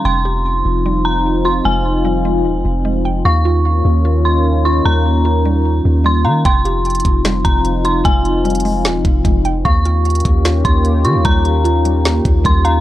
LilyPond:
<<
  \new Staff \with { instrumentName = "Synth bell" } { \time 4/4 \key f \minor \tempo 4 = 150 c'''2~ c'''8 bes''4 c'''8 | aes''2 r2 | des'''2~ des'''8 c'''4 des'''8 | bes''2 r4 c'''8 bes''8 |
c'''2~ c'''8 bes''4 c'''8 | aes''2 r2 | des'''2~ des'''8 c'''4 des'''8 | bes''2 r4 c'''8 bes''8 | }
  \new Staff \with { instrumentName = "Synth pluck" } { \time 4/4 \key f \minor g''8 g'4. g4. f'8 | aes4 g8 aes4. aes8 g''8 | f''8 f'4. f'4. f'8 | g4 f'8 g4. g8 f''8 |
g''8 g'4. g4. f'8 | aes4 g8 aes4. aes8 g''8 | f''8 f'4. f'4. f'8 | g4 f'8 g4. g8 f''8 | }
  \new Staff \with { instrumentName = "Analog synth pad" } { \time 4/4 \key f \minor <f c' ees' f'>1~ | <f c' ees' f'>1 | <ees bes des' f'>1~ | <ees bes des' f'>1 |
<f c' ees' f'>1~ | <f c' ees' f'>1 | <ees bes des' f' g'>1~ | <ees bes des' f' g'>1 | }
  \new Staff \with { instrumentName = "808-style bass" } { \clef bass \time 4/4 \key f \minor f,,4. f,,2~ f,,8 | f,,2 ees,,16 f,,16 f,,4. | ees,4. ees,2~ ees,8 | ees,2~ ees,8 ees,4 ees8 |
f,,4. f,,4 f,,4. | f,,2 ees,,16 f,,16 f,,8 f,,4 | ees,4. ees,4 ees,4 ees16 ees,16 | ees,2~ ees,8 ees,8 ees,4 | }
  \new DrumStaff \with { instrumentName = "Drums" } \drummode { \time 4/4 r4 r4 r4 r4 | r4 r4 r4 r4 | r4 r4 r4 r4 | r4 r4 r4 r4 |
<hh bd>8 hh8 hh32 hh32 hh32 hh32 <hh bd>8 <hh sn>8 <hh bd>8 hh8 hh8 | <hh bd>8 hh8 hh32 hh32 hh32 hh32 hho8 <hh sn>8 <hh bd>8 <hh bd>8 hh8 | <hh bd>8 hh8 hh32 hh32 hh32 hh32 <hh bd>8 <hh sn>8 <hh bd>8 hh8 hh8 | <hh bd>8 hh8 hh8 hh8 <hh sn>8 <hh bd>8 <hh bd>8 hh8 | }
>>